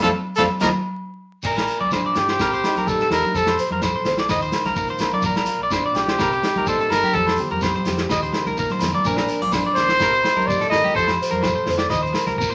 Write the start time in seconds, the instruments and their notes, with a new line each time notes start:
0.02 fingered electric bass F2, trombone F3, steel-string acoustic guitar G3 A3 C4, clean electric guitar A4 C5 F5, trumpet A4, kick, snare, high conga, low agogo
0.36 fingered electric bass F2, trombone F3, steel-string acoustic guitar G3 A3 C4, trumpet A4, clean electric guitar A4 C5 F5, kick, snare, high conga, low agogo, shekere
0.60 fingered electric bass D#2, steel-string acoustic guitar F3 A#3 D#4, trombone F3, clean electric guitar F4 A#4 D#5, trumpet A#4, kick, snare, high conga, low agogo, shekere
1.43 fingered electric bass A#1, steel-string acoustic guitar A#2, clean electric guitar A#4, kick, crash, shekere
1.55 clean electric guitar A#4, snare, low agogo, shekere
1.67 steel-string acoustic guitar F4, shekere
1.80 fingered electric bass A#1, clean electric guitar D5, high conga
1.91 steel-string acoustic guitar F3 D4, clean electric guitar C5, kick, snare, low agogo, shekere
2.06 clean electric guitar D5
2.15 fingered electric bass G2, steel-string acoustic guitar F4, trumpet G4, snare, low conga, shekere
2.28 clean electric guitar C5, snare
2.39 fingered electric bass C2, steel-string acoustic guitar C3, clean electric guitar A#4, kick, snare, low agogo, shekere
2.52 clean electric guitar C5, shekere
2.64 steel-string acoustic guitar D#4, snare, low agogo, shekere
2.76 fingered electric bass A#1, clean electric guitar A#4, snare, high conga, shekere
2.87 steel-string acoustic guitar G3 A#3, trumpet A4, kick, shekere
3.00 clean electric guitar A4, snare, shekere
3.10 fingered electric bass E2, steel-string acoustic guitar D#4, trumpet A#4, snare, low agogo, shekere
3.24 muted clean electric guitar stroke, high conga, shekere
3.34 fingered electric bass F2, steel-string acoustic guitar F3, trumpet A4, clean electric guitar A4, kick, shekere
3.46 clean electric guitar C5, snare, low agogo, shekere
3.58 steel-string acoustic guitar C5, shekere
3.70 fingered electric bass F2, clean electric guitar A#4, high conga
3.82 steel-string acoustic guitar F4 A4, clean electric guitar C5, kick, snare, low agogo, shekere
3.96 clean electric guitar C5
4.05 fingered electric bass A#1, steel-string acoustic guitar C5, snare, low conga, shekere
4.18 clean electric guitar D5, snare
4.29 fingered electric bass D#2, steel-string acoustic guitar D#3, clean electric guitar D#5, kick, snare, low agogo, shekere
4.41 clean electric guitar C5, shekere
4.52 steel-string acoustic guitar A#4, snare, low agogo, shekere
4.64 fingered electric bass C2, clean electric guitar A#4, snare, high conga, shekere
4.76 steel-string acoustic guitar A#3 F4, clean electric guitar A#4, kick, shekere
4.87 clean electric guitar C5, shekere
4.99 fingered electric bass A#1, steel-string acoustic guitar A#4, snare, low conga, low agogo, shekere
5.11 clean electric guitar D5, high conga, shekere
5.22 fingered electric bass A#1, steel-string acoustic guitar A#2, clean electric guitar A#4, kick, shekere
5.35 clean electric guitar A#4, snare, low agogo, shekere
5.45 steel-string acoustic guitar F4, shekere
5.58 fingered electric bass A#1
5.63 clean electric guitar D5
5.70 steel-string acoustic guitar F3 D4, clean electric guitar C5, kick, snare, low agogo, shekere
5.86 clean electric guitar D5
5.94 fingered electric bass B1, steel-string acoustic guitar F4, trumpet G4, snare, shekere
6.08 clean electric guitar C5, snare
6.19 fingered electric bass C2, steel-string acoustic guitar C3, clean electric guitar A#4, kick, snare, low agogo, shekere
6.32 muted clean electric guitar stroke, shekere
6.42 steel-string acoustic guitar D#4, snare, low agogo, shekere
6.55 fingered electric bass A#1, clean electric guitar A#4, high conga, shekere
6.66 steel-string acoustic guitar G3 A#3, trumpet A4, clean electric guitar C5, kick, shekere
6.80 clean electric guitar A4, shekere
6.90 fingered electric bass G2, steel-string acoustic guitar D#4, trumpet A#4, snare, low conga, low agogo, shekere
7.03 clean electric guitar G4, high conga, shekere
7.13 fingered electric bass F2, steel-string acoustic guitar F3, trumpet A4, clean electric guitar A4, kick, shekere
7.27 clean electric guitar C5, snare, low agogo, shekere
7.37 steel-string acoustic guitar G4, low conga, shekere
7.50 fingered electric bass F2, clean electric guitar A#4, high conga, shekere
7.61 steel-string acoustic guitar C4 F4, clean electric guitar C5, kick, snare, low agogo, shekere
7.74 clean electric guitar C5, high conga, shekere
7.85 fingered electric bass F2, steel-string acoustic guitar G4, snare, low conga, shekere
7.98 snare, shekere
8.09 fingered electric bass D#2, steel-string acoustic guitar D#3, clean electric guitar D#5, kick, snare, low agogo, shekere
8.23 clean electric guitar C5, shekere
8.33 steel-string acoustic guitar A#4, snare, low conga, low agogo, shekere
8.45 fingered electric bass C2, clean electric guitar A#4, snare, high conga
8.57 steel-string acoustic guitar A#3 F4, clean electric guitar A#4, kick, shekere
8.70 clean electric guitar C5, high conga, shekere
8.79 fingered electric bass F2, steel-string acoustic guitar A#4, snare, low conga, low agogo, shekere
8.93 clean electric guitar D5, high conga, shekere
9.05 fingered electric bass A#1, steel-string acoustic guitar A#2 F3 D4 F4 A#4, clean electric guitar A#4, kick, shekere
9.16 clean electric guitar A#4, snare, low agogo, shekere
9.28 steel-string acoustic guitar D4, shekere
9.41 fingered electric bass A#1, steel-string acoustic guitar F4, clean electric guitar D5, high conga
9.52 steel-string acoustic guitar F3 D4, clean electric guitar C5, kick, snare, low agogo, shekere
9.66 clean electric guitar D5
9.75 fingered electric bass A#1, steel-string acoustic guitar A#4, trumpet C5, snare, low conga, shekere
9.89 clean electric guitar C5, snare
10.00 fingered electric bass C2, steel-string acoustic guitar C3, clean electric guitar A#4, kick, snare, low agogo, shekere
10.13 clean electric guitar C5, shekere
10.23 steel-string acoustic guitar D#4, snare, low agogo, shekere
10.36 fingered electric bass A#1, clean electric guitar A#4, high conga, shekere
10.47 steel-string acoustic guitar G3 A#3, clean electric guitar C5, trumpet D5, kick, shekere
10.60 clean electric guitar A4, snare, shekere
10.70 fingered electric bass G2, trumpet D#5, snare, low conga, low agogo, shekere
10.74 steel-string acoustic guitar A#4
10.84 clean electric guitar G4, high conga, shekere
10.94 fingered electric bass F2, steel-string acoustic guitar F3 F4, clean electric guitar A4, trumpet C5, kick, shekere
10.99 steel-string acoustic guitar A4
11.07 clean electric guitar C5, snare, low agogo, shekere
11.22 steel-string acoustic guitar C5, shekere
11.31 fingered electric bass F2, clean electric guitar A#4, high conga
11.41 steel-string acoustic guitar F4 A4, clean electric guitar C5, kick, snare, low agogo
11.46 shekere
11.55 clean electric guitar C5
11.66 fingered electric bass F2, steel-string acoustic guitar C5, snare, low conga, shekere
11.78 clean electric guitar D5, snare
11.89 fingered electric bass D#2, clean electric guitar D#5, muted steel-string acoustic guitar stroke, kick, snare, low agogo, shekere
12.03 clean electric guitar C5, shekere
12.13 steel-string acoustic guitar A#4, snare, low agogo, shekere
12.26 fingered electric bass C2, clean electric guitar A#4, snare, high conga, shekere
12.38 steel-string acoustic guitar A#3 F4, clean electric guitar A#4, kick, shekere
12.50 clean electric guitar C5